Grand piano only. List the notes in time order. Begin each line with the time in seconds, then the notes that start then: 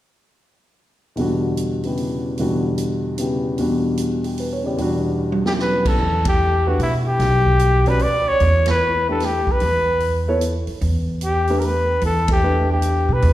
1.16 E2 B2 D3 G3
1.21 F#4
1.84 C#3 B3 E4 G4
2.39 E2 B2 D3 G3 F#4
3.18 C#3 B3 E4 G4
3.58 E2 B2 G3 D4 F#4
4.25 G4
4.40 B4
4.53 C#5
4.63 C#3 B3 E4 G4 D5
4.77 E2 B2 G3 D4
4.82 F#4
5.45 B2 F#3 C#4 E4
6.67 A3 D4 G4 B4
7.87 C#4 F#4 B4 D5
9.09 A3 D4 G4 B4
10.28 B3 E4 A4 C#5
11.50 A3 D4 G4 B4
12.43 A3 D4 G4 B4